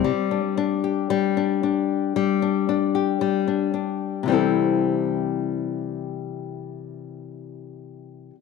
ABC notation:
X:1
M:4/4
L:1/8
Q:"Swing 16ths" 1/4=114
K:C
V:1 name="Nylon-string guitar"
G, D D G G, D D2 | G, D D G G, D D2 | [C,E,G,CEA]8- | [C,E,G,CEA]8 |]